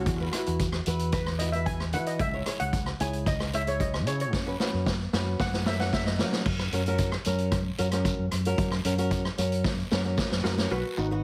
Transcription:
0.01 steel pan F#4
0.06 fingered electric bass E2, steel pan F#4, kick, closed hi-hat, long guiro
0.17 nylon-string guitar E4 F#4, steel pan F#4
0.21 steel pan F#4, nylon-string guitar B4
0.31 nylon-string guitar E4 F#4 B4, steel pan F#4, cross-stick, closed hi-hat
0.39 steel pan F#4
0.46 fingered electric bass E2, steel pan F#4, closed hi-hat
0.59 kick, closed hi-hat, short guiro
0.72 cross-stick
0.86 fingered electric bass E2, nylon-string guitar E4 F#4 B4, closed hi-hat, short guiro
0.99 closed hi-hat
1.12 steel pan B4, kick, closed hi-hat, short guiro, long guiro
1.26 cross-stick
1.39 nylon-string guitar E4 F#4 B4, steel pan D#5, closed hi-hat
1.52 nylon-string guitar E4 F#4 B4, steel pan E5, closed hi-hat
1.66 steel pan G#5, kick, closed hi-hat
1.80 cross-stick
1.93 fingered electric bass E3, nylon-string guitar E4 F#4 B4, steel pan F#5, closed hi-hat, short guiro
2.06 steel pan D#5, closed hi-hat
2.19 fingered electric bass C#2, steel pan E5, kick, closed hi-hat, long guiro
2.33 nylon-string guitar E4 G#4 C#5
2.46 nylon-string guitar E4 G#4 C#5, cross-stick, closed hi-hat
2.60 fingered electric bass C#2, steel pan F#5, closed hi-hat
2.73 kick, closed hi-hat, short guiro
2.86 cross-stick
3.00 fingered electric bass C#2, nylon-string guitar E4 G#4 C#5, steel pan G#5, closed hi-hat, short guiro
3.13 closed hi-hat
3.26 steel pan D#5, kick, closed hi-hat, short guiro, long guiro
3.40 cross-stick
3.53 nylon-string guitar E4 G#4 C#5, steel pan E5, closed hi-hat
3.67 nylon-string guitar E4 G#4 C#5, steel pan C#5, closed hi-hat
3.80 steel pan D#5, kick, closed hi-hat
3.94 cross-stick
4.06 fingered electric bass C#3, nylon-string guitar E4 G#4 C#5, steel pan C#5, closed hi-hat, short guiro
4.20 steel pan C#5, closed hi-hat
4.33 fingered electric bass F#2, kick, snare, long guiro
4.47 nylon-string guitar C#4 F#4 B4
4.60 nylon-string guitar C#4 F#4 B4, snare
4.74 fingered electric bass F#2
4.86 kick, snare, short guiro
5.13 fingered electric bass F#2, nylon-string guitar C#4 F#4 B4, snare
5.40 fingered electric bass F#2, steel pan F#5, kick, snare, short guiro, long guiro
5.53 snare
5.66 nylon-string guitar C#4 F#4 A#4, steel pan E5, snare
5.80 nylon-string guitar C#4 F#4 A#4, steel pan F#5, snare
5.93 steel pan E5, kick, snare
6.06 steel pan D#5, snare
6.19 fingered electric bass F#3, nylon-string guitar C#4 F#4 A#4, snare, short guiro
6.33 snare
6.46 fingered electric bass F#2, kick, crash, long guiro
6.59 cross-stick
6.72 fingered electric bass F#2, nylon-string guitar C#4 F#4 A#4, closed hi-hat
6.86 nylon-string guitar C#4 F#4 A#4, closed hi-hat
6.98 kick, closed hi-hat, short guiro
7.12 cross-stick
7.25 fingered electric bass F#2, nylon-string guitar C#4 F#4 A#4, closed hi-hat, short guiro
7.38 closed hi-hat
7.52 kick, cross-stick, closed hi-hat, long guiro
7.78 fingered electric bass F#2, nylon-string guitar C#4 F#4 A#4, closed hi-hat, short guiro
7.91 nylon-string guitar C#4 F#4 A#4, cross-stick, closed hi-hat
8.05 kick, closed hi-hat, short guiro
8.19 fingered electric bass F#2
8.31 fingered electric bass F#2, cross-stick, closed hi-hat
8.45 nylon-string guitar C#4 F#4 A#4, closed hi-hat
8.58 fingered electric bass F#2, kick, closed hi-hat, long guiro
8.72 cross-stick
8.85 fingered electric bass F#2, nylon-string guitar C#4 F#4 A#4, closed hi-hat
8.98 nylon-string guitar C#4 F#4 A#4, closed hi-hat
9.11 kick, closed hi-hat, short guiro
9.25 cross-stick
9.38 fingered electric bass F#2, nylon-string guitar C#4 F#4 A#4, closed hi-hat, short guiro
9.52 closed hi-hat
9.64 kick, snare, long guiro
9.91 fingered electric bass F#2, nylon-string guitar C#4 F#4 A#4, snare, short guiro
10.05 nylon-string guitar C#4 F#4 A#4
10.17 kick, snare, short guiro
10.31 fingered electric bass F#2, snare
10.44 fingered electric bass F#2, steel pan F#4 A#4, snare
10.57 nylon-string guitar C#4 F#4 A#4, snare
10.71 fingered electric bass B1, steel pan F#4 B4, long guiro
10.97 fingered electric bass G#1, nylon-string guitar B3 D#4 F#4, steel pan D#4 F#4, short guiro
11.11 nylon-string guitar B3 D#4 F#4

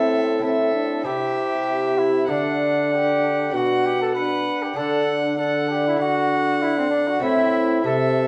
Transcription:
Already playing: lute A2 C4 E4, bassoon A2, trombone C4, cornet A4, violin E5
0.39 lute C4 E4, trombone C4, cornet A4
0.44 violin E5
0.74 trombone D4
1.03 bassoon C3, lute C3 C4 E4, trombone E4, cornet G4, violin E5
1.98 cornet E4
2.27 bassoon D3, lute D3 A3 D4, trombone D4, cornet D4, violin F#5
2.94 cornet G4
3.51 bassoon B2, lute B2 D4, trombone D4, violin F#5
3.55 cornet F#4
3.85 cornet G4
4.01 cornet A4
4.14 trombone D4, cornet B4, violin F#5
4.63 cornet G4
4.74 bassoon D3, lute D3 D4, trombone D4, cornet A4, violin F#5
5.37 trombone D4, cornet A4, violin F#5
5.70 cornet G4
5.87 cornet E4
5.97 lute D4, trombone D4, cornet F#4, violin F#5
6.62 cornet E4
6.78 cornet C4
6.90 cornet D4
7.08 cornet F#4
7.19 bassoon A2, lute A2 A3 C4 E4, trombone C4, violin E5
7.23 cornet E4
7.84 bassoon C3, lute C3, trombone C4, cornet A4, violin E5

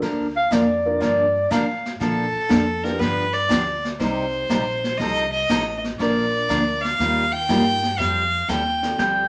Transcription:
0.02 upright bass D2, steel-string acoustic guitar D3 F3 A#3 D4 A#4, brush sweep, kick, snare
0.36 clarinet F5
0.51 upright bass F2, steel-string acoustic guitar D3 F3 A#3 D4 A#4, clarinet D5, kick, snare, hi-hat pedal
0.85 upright piano F3 A#3 D4 F4 A#4
1.00 upright bass G2, steel-string acoustic guitar D3 F3 A#3 D4 A#4, clarinet D5, brush sweep, kick, snare
1.51 upright bass A2, steel-string acoustic guitar D3 F3 A#3 D4 A#4, clarinet F5, kick, snare, hi-hat pedal
1.86 snare
2.00 upright bass A#2, steel-string acoustic guitar D3 F3 A#3 D4 A4, fiddle A4, brush sweep, kick, snare
2.35 muted upright bass stroke
2.49 upright bass F2, steel-string acoustic guitar D3 F3 A#3 D4 A4, kick, snare, hi-hat pedal
2.83 upright piano G3 B3 D4 F4 G4, fiddle A#4, snare
2.99 upright bass G2, steel-string acoustic guitar D3 F3 B3 D4 G4, fiddle B4, brush sweep, kick, snare
3.34 fiddle D5
3.49 upright bass D2, steel-string acoustic guitar D3 F3 B3 D4 G4, kick, snare, hi-hat pedal
3.85 snare
3.99 upright bass C2, steel-string acoustic guitar C3 G3 C4 D#4 G4, upright piano G3 C4 D#4 G4 C5, fiddle C5, brush sweep, kick, snare
4.50 upright bass A#1, steel-string acoustic guitar C3 G3 C4 D#4 G4, kick, snare, hi-hat pedal
4.84 snare
4.97 upright bass C2, steel-string acoustic guitar C3 F3 C4 D#4 A4, fiddle D#5, brush sweep, kick, snare
5.32 fiddle D#5
5.49 upright bass A1, steel-string acoustic guitar C3 F3 C4 D#4 A4, kick, snare, hi-hat pedal
5.84 snare
5.99 upright bass A#1, steel-string acoustic guitar D3 F3 A#3 D4 A#4, upright piano F3 A#3 D4 F4 A#4, fiddle D5, brush sweep, kick, snare
6.49 upright bass D2, steel-string acoustic guitar D3 F3 A#3 D4 A#4, kick, snare, hi-hat pedal
6.82 fiddle F5, snare
6.99 upright bass D#2, steel-string acoustic guitar D#3 G3 A#3 F4 G4, brush sweep, kick, snare
7.32 fiddle G5
7.49 upright bass G2, steel-string acoustic guitar D#3 G3 A#3 F4 G4, upright piano G3 A#3 D#4 F4 G4, kick, snare, hi-hat pedal
7.83 snare
7.98 upright bass F2, steel-string acoustic guitar F3 G3 C4 G4 A4, fiddle F5, brush sweep, kick, snare
8.48 upright bass D#2, steel-string acoustic guitar F3 G3 C4 G4 A4, fiddle G5, kick, snare, hi-hat pedal
8.83 upright piano G3 A3 C4 F4 G4, snare
8.98 upright bass D2, steel-string acoustic guitar F3 G3 C4 G4 A4, pedal steel guitar G5, brush sweep, kick, snare

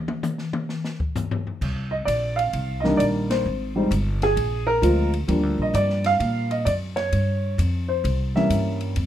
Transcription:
0.08 mid tom
0.23 hi-hat pedal, mid tom
0.38 snare
0.53 mid tom
0.69 snare
0.84 snare
1.00 kick
1.16 floor tom, hi-hat pedal
1.31 floor tom
1.47 floor tom
1.61 upright bass C2, kick, crash
1.91 grand piano D#5
2.05 upright bass A#1, grand piano D5, kick, hi-hat pedal, ride
2.36 grand piano F5, ride
2.53 upright bass C2, kick, ride
2.80 grand piano D#3 D#5, snare
2.84 grand piano G3 A#3 D4
2.97 upright bass A#1, grand piano D5, kick, hi-hat pedal, ride
3.30 grand piano C5, snare, ride
3.46 upright bass G#1
3.76 grand piano G3 G#3 C4 D#4
3.91 upright bass G1, hi-hat pedal, ride
4.22 grand piano G#4, snare, ride
4.37 upright bass A#1, kick, ride
4.67 grand piano A#4
4.82 upright bass D2, grand piano F3 G#3 C4 F4, hi-hat pedal, ride
5.14 ride
5.28 upright bass D#2, grand piano F3 G3 A#3 D4, kick, ride
5.43 upright bass D2
5.58 upright bass A#1
5.62 grand piano D#5
5.74 upright bass G2, grand piano D5, kick, hi-hat pedal, ride
5.90 snare
6.04 grand piano F5, snare, ride
6.20 upright bass A#2, kick, ride
6.51 grand piano D#5, ride
6.65 upright bass F#2, grand piano D5, kick, hi-hat pedal, ride
6.96 grand piano C#5, snare, ride
7.12 upright bass G2, ride
7.58 upright bass F2, hi-hat pedal, ride
7.88 grand piano C5
8.04 upright bass C2, kick, ride
8.35 grand piano E3 G3 A#3 C#4 E5, snare
8.50 upright bass G2, hi-hat pedal, ride
8.81 ride
8.96 upright bass F2, ride

